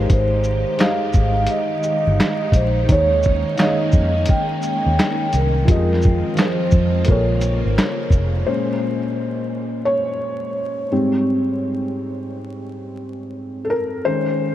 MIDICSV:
0, 0, Header, 1, 6, 480
1, 0, Start_track
1, 0, Tempo, 697674
1, 68, Time_signature, 4, 2, 24, 8
1, 10010, End_track
2, 0, Start_track
2, 0, Title_t, "Vibraphone"
2, 0, Program_c, 0, 11
2, 0, Note_on_c, 0, 70, 81
2, 81, Note_off_c, 0, 70, 0
2, 81, Note_on_c, 0, 72, 95
2, 559, Note_on_c, 0, 77, 97
2, 569, Note_off_c, 0, 72, 0
2, 1006, Note_off_c, 0, 77, 0
2, 1037, Note_on_c, 0, 75, 98
2, 1758, Note_on_c, 0, 72, 88
2, 1774, Note_off_c, 0, 75, 0
2, 1999, Note_on_c, 0, 73, 105
2, 2000, Note_off_c, 0, 72, 0
2, 2412, Note_off_c, 0, 73, 0
2, 2448, Note_on_c, 0, 77, 74
2, 2475, Note_off_c, 0, 77, 0
2, 2481, Note_on_c, 0, 75, 92
2, 2960, Note_on_c, 0, 79, 102
2, 2969, Note_off_c, 0, 75, 0
2, 3646, Note_off_c, 0, 79, 0
2, 3683, Note_on_c, 0, 70, 89
2, 4403, Note_on_c, 0, 72, 84
2, 4417, Note_off_c, 0, 70, 0
2, 4848, Note_on_c, 0, 69, 61
2, 4855, Note_off_c, 0, 72, 0
2, 4875, Note_off_c, 0, 69, 0
2, 4883, Note_on_c, 0, 70, 79
2, 5568, Note_off_c, 0, 70, 0
2, 10010, End_track
3, 0, Start_track
3, 0, Title_t, "Felt piano"
3, 0, Program_c, 1, 0
3, 0, Control_c, 1, 64, 127
3, 0, Note_on_c, 1, 56, 74
3, 0, Note_on_c, 1, 63, 69
3, 0, Note_on_c, 1, 67, 67
3, 0, Note_on_c, 1, 72, 77
3, 425, Note_off_c, 1, 56, 0
3, 432, Note_off_c, 1, 63, 0
3, 438, Note_off_c, 1, 67, 0
3, 468, Note_off_c, 1, 72, 0
3, 530, Note_on_c, 1, 56, 66
3, 544, Note_on_c, 1, 63, 64
3, 557, Note_on_c, 1, 67, 66
3, 573, Note_on_c, 1, 75, 75
3, 1235, Note_off_c, 1, 56, 0
3, 1242, Note_off_c, 1, 63, 0
3, 1249, Note_off_c, 1, 67, 0
3, 1257, Note_off_c, 1, 75, 0
3, 1970, Note_on_c, 1, 51, 73
3, 1985, Note_on_c, 1, 63, 69
3, 1998, Control_c, 1, 64, 0
3, 1998, Note_on_c, 1, 68, 64
3, 2012, Note_on_c, 1, 73, 86
3, 2116, Control_c, 1, 64, 127
3, 2353, Note_off_c, 1, 51, 0
3, 2360, Note_off_c, 1, 63, 0
3, 2367, Note_off_c, 1, 68, 0
3, 2374, Note_off_c, 1, 73, 0
3, 2450, Note_on_c, 1, 51, 73
3, 2464, Note_on_c, 1, 63, 67
3, 2478, Note_on_c, 1, 68, 66
3, 2492, Note_on_c, 1, 73, 81
3, 3155, Note_off_c, 1, 51, 0
3, 3162, Note_off_c, 1, 63, 0
3, 3169, Note_off_c, 1, 68, 0
3, 3176, Note_off_c, 1, 73, 0
3, 3889, Note_on_c, 1, 53, 76
3, 3903, Note_on_c, 1, 65, 69
3, 3917, Note_on_c, 1, 67, 49
3, 3918, Control_c, 1, 64, 0
3, 3932, Note_on_c, 1, 75, 76
3, 3963, Note_on_c, 1, 68, 69
3, 3970, Note_off_c, 1, 67, 0
3, 4043, Control_c, 1, 64, 127
3, 4272, Note_off_c, 1, 53, 0
3, 4279, Note_off_c, 1, 65, 0
3, 4294, Note_off_c, 1, 75, 0
3, 4309, Note_off_c, 1, 68, 0
3, 4369, Note_on_c, 1, 53, 76
3, 4383, Note_on_c, 1, 65, 67
3, 4398, Note_on_c, 1, 68, 61
3, 4412, Note_on_c, 1, 72, 78
3, 4852, Note_on_c, 1, 58, 67
3, 4856, Note_off_c, 1, 65, 0
3, 4859, Note_off_c, 1, 53, 0
3, 4866, Note_on_c, 1, 65, 71
3, 4870, Note_off_c, 1, 68, 0
3, 4878, Control_c, 1, 64, 0
3, 4880, Note_off_c, 1, 72, 0
3, 4880, Note_on_c, 1, 68, 66
3, 4893, Note_on_c, 1, 73, 86
3, 5009, Control_c, 1, 64, 127
3, 5642, Note_off_c, 1, 58, 0
3, 5650, Note_off_c, 1, 65, 0
3, 5656, Note_off_c, 1, 68, 0
3, 5663, Note_off_c, 1, 73, 0
3, 5824, Note_on_c, 1, 72, 85
3, 5829, Note_on_c, 1, 46, 49
3, 5833, Note_on_c, 1, 56, 44
3, 5836, Control_c, 1, 64, 0
3, 5838, Note_on_c, 1, 61, 55
3, 5972, Control_c, 1, 64, 127
3, 6175, Note_off_c, 1, 46, 0
3, 6177, Note_off_c, 1, 56, 0
3, 6180, Note_off_c, 1, 61, 0
3, 6759, Note_off_c, 1, 72, 0
3, 6780, Note_on_c, 1, 73, 95
3, 7477, Note_off_c, 1, 73, 0
3, 7508, Note_on_c, 1, 44, 48
3, 7512, Note_on_c, 1, 55, 47
3, 7516, Control_c, 1, 64, 0
3, 7516, Note_on_c, 1, 60, 52
3, 7636, Control_c, 1, 64, 127
3, 9388, Note_on_c, 1, 69, 54
3, 9400, Note_off_c, 1, 44, 0
3, 9402, Note_off_c, 1, 55, 0
3, 9405, Note_off_c, 1, 60, 0
3, 9425, Note_off_c, 1, 69, 0
3, 9425, Note_on_c, 1, 70, 75
3, 9667, Note_on_c, 1, 72, 94
3, 9670, Note_on_c, 1, 51, 48
3, 9674, Note_off_c, 1, 70, 0
3, 9674, Note_on_c, 1, 56, 46
3, 9677, Control_c, 1, 64, 0
3, 9679, Note_on_c, 1, 61, 59
3, 9784, Control_c, 1, 64, 127
3, 10010, Note_off_c, 1, 51, 0
3, 10010, Note_off_c, 1, 56, 0
3, 10010, Note_off_c, 1, 61, 0
3, 10010, Note_off_c, 1, 72, 0
3, 10010, End_track
4, 0, Start_track
4, 0, Title_t, "String machine"
4, 0, Program_c, 2, 50
4, 0, Note_on_c, 2, 51, 77
4, 0, Note_on_c, 2, 56, 78
4, 0, Note_on_c, 2, 63, 90
4, 0, Note_on_c, 2, 67, 75
4, 1967, Note_off_c, 2, 67, 0
4, 1989, Note_on_c, 2, 58, 76
4, 1989, Note_on_c, 2, 61, 83
4, 3880, Note_off_c, 2, 56, 0
4, 3881, Note_off_c, 2, 63, 0
4, 3890, Note_off_c, 2, 58, 0
4, 3890, Note_off_c, 2, 61, 0
4, 3905, Note_on_c, 2, 53, 75
4, 3905, Note_on_c, 2, 65, 95
4, 3906, Note_on_c, 2, 56, 76
4, 3906, Note_on_c, 2, 60, 76
4, 4841, Note_off_c, 2, 51, 0
4, 4858, Note_off_c, 2, 60, 0
4, 4865, Note_on_c, 2, 49, 77
4, 4866, Note_on_c, 2, 58, 72
4, 5807, Note_off_c, 2, 65, 0
4, 5808, Note_off_c, 2, 53, 0
4, 5808, Note_off_c, 2, 56, 0
4, 5817, Note_off_c, 2, 49, 0
4, 5818, Note_off_c, 2, 58, 0
4, 10010, End_track
5, 0, Start_track
5, 0, Title_t, "Fingered electric bass"
5, 0, Program_c, 3, 33
5, 69, Note_on_c, 3, 32, 100
5, 437, Note_off_c, 3, 32, 0
5, 787, Note_on_c, 3, 32, 83
5, 1005, Note_off_c, 3, 32, 0
5, 1426, Note_on_c, 3, 31, 92
5, 1501, Note_off_c, 3, 31, 0
5, 1736, Note_on_c, 3, 34, 86
5, 1959, Note_off_c, 3, 34, 0
5, 1990, Note_on_c, 3, 39, 98
5, 2357, Note_off_c, 3, 39, 0
5, 2705, Note_on_c, 3, 41, 78
5, 2924, Note_off_c, 3, 41, 0
5, 3346, Note_on_c, 3, 39, 79
5, 3422, Note_off_c, 3, 39, 0
5, 3671, Note_on_c, 3, 36, 92
5, 3887, Note_off_c, 3, 36, 0
5, 3910, Note_on_c, 3, 41, 105
5, 4277, Note_off_c, 3, 41, 0
5, 4626, Note_on_c, 3, 41, 84
5, 4845, Note_off_c, 3, 41, 0
5, 4873, Note_on_c, 3, 34, 96
5, 5239, Note_off_c, 3, 34, 0
5, 5266, Note_on_c, 3, 32, 89
5, 5342, Note_off_c, 3, 32, 0
5, 5577, Note_on_c, 3, 29, 82
5, 5800, Note_off_c, 3, 29, 0
5, 10010, End_track
6, 0, Start_track
6, 0, Title_t, "Drums"
6, 67, Note_on_c, 9, 42, 84
6, 69, Note_on_c, 9, 36, 107
6, 136, Note_off_c, 9, 42, 0
6, 137, Note_off_c, 9, 36, 0
6, 302, Note_on_c, 9, 82, 41
6, 371, Note_off_c, 9, 82, 0
6, 542, Note_on_c, 9, 42, 58
6, 556, Note_on_c, 9, 38, 109
6, 556, Note_on_c, 9, 39, 84
6, 611, Note_off_c, 9, 42, 0
6, 625, Note_off_c, 9, 38, 0
6, 625, Note_off_c, 9, 39, 0
6, 778, Note_on_c, 9, 82, 44
6, 785, Note_on_c, 9, 36, 83
6, 847, Note_off_c, 9, 82, 0
6, 854, Note_off_c, 9, 36, 0
6, 1008, Note_on_c, 9, 42, 88
6, 1077, Note_off_c, 9, 42, 0
6, 1261, Note_on_c, 9, 82, 45
6, 1329, Note_off_c, 9, 82, 0
6, 1516, Note_on_c, 9, 38, 110
6, 1516, Note_on_c, 9, 39, 88
6, 1517, Note_on_c, 9, 42, 71
6, 1585, Note_off_c, 9, 38, 0
6, 1585, Note_off_c, 9, 39, 0
6, 1586, Note_off_c, 9, 42, 0
6, 1735, Note_on_c, 9, 36, 86
6, 1744, Note_on_c, 9, 42, 44
6, 1744, Note_on_c, 9, 82, 45
6, 1804, Note_off_c, 9, 36, 0
6, 1813, Note_off_c, 9, 42, 0
6, 1813, Note_off_c, 9, 82, 0
6, 1987, Note_on_c, 9, 42, 87
6, 1988, Note_on_c, 9, 36, 118
6, 2056, Note_off_c, 9, 42, 0
6, 2057, Note_off_c, 9, 36, 0
6, 2221, Note_on_c, 9, 82, 41
6, 2242, Note_on_c, 9, 36, 75
6, 2290, Note_off_c, 9, 82, 0
6, 2311, Note_off_c, 9, 36, 0
6, 2460, Note_on_c, 9, 42, 62
6, 2474, Note_on_c, 9, 38, 114
6, 2474, Note_on_c, 9, 39, 85
6, 2529, Note_off_c, 9, 42, 0
6, 2543, Note_off_c, 9, 38, 0
6, 2543, Note_off_c, 9, 39, 0
6, 2697, Note_on_c, 9, 82, 40
6, 2705, Note_on_c, 9, 36, 80
6, 2766, Note_off_c, 9, 82, 0
6, 2774, Note_off_c, 9, 36, 0
6, 2928, Note_on_c, 9, 42, 84
6, 2952, Note_on_c, 9, 36, 100
6, 2997, Note_off_c, 9, 42, 0
6, 3021, Note_off_c, 9, 36, 0
6, 3181, Note_on_c, 9, 82, 48
6, 3250, Note_off_c, 9, 82, 0
6, 3436, Note_on_c, 9, 38, 116
6, 3437, Note_on_c, 9, 39, 83
6, 3437, Note_on_c, 9, 42, 78
6, 3505, Note_off_c, 9, 38, 0
6, 3505, Note_off_c, 9, 39, 0
6, 3506, Note_off_c, 9, 42, 0
6, 3665, Note_on_c, 9, 42, 44
6, 3665, Note_on_c, 9, 82, 46
6, 3734, Note_off_c, 9, 42, 0
6, 3734, Note_off_c, 9, 82, 0
6, 3909, Note_on_c, 9, 36, 107
6, 3909, Note_on_c, 9, 42, 84
6, 3977, Note_off_c, 9, 42, 0
6, 3978, Note_off_c, 9, 36, 0
6, 4080, Note_on_c, 9, 38, 37
6, 4141, Note_on_c, 9, 82, 41
6, 4149, Note_off_c, 9, 38, 0
6, 4163, Note_on_c, 9, 36, 86
6, 4210, Note_off_c, 9, 82, 0
6, 4231, Note_off_c, 9, 36, 0
6, 4382, Note_on_c, 9, 42, 67
6, 4396, Note_on_c, 9, 38, 113
6, 4397, Note_on_c, 9, 39, 85
6, 4451, Note_off_c, 9, 42, 0
6, 4465, Note_off_c, 9, 38, 0
6, 4465, Note_off_c, 9, 39, 0
6, 4617, Note_on_c, 9, 82, 43
6, 4625, Note_on_c, 9, 36, 80
6, 4686, Note_off_c, 9, 82, 0
6, 4694, Note_off_c, 9, 36, 0
6, 4848, Note_on_c, 9, 42, 85
6, 4872, Note_on_c, 9, 36, 100
6, 4917, Note_off_c, 9, 42, 0
6, 4941, Note_off_c, 9, 36, 0
6, 5100, Note_on_c, 9, 42, 47
6, 5100, Note_on_c, 9, 82, 44
6, 5169, Note_off_c, 9, 42, 0
6, 5169, Note_off_c, 9, 82, 0
6, 5356, Note_on_c, 9, 38, 110
6, 5356, Note_on_c, 9, 39, 85
6, 5357, Note_on_c, 9, 42, 70
6, 5425, Note_off_c, 9, 38, 0
6, 5425, Note_off_c, 9, 39, 0
6, 5425, Note_off_c, 9, 42, 0
6, 5576, Note_on_c, 9, 36, 83
6, 5584, Note_on_c, 9, 82, 45
6, 5644, Note_off_c, 9, 36, 0
6, 5652, Note_off_c, 9, 82, 0
6, 10010, End_track
0, 0, End_of_file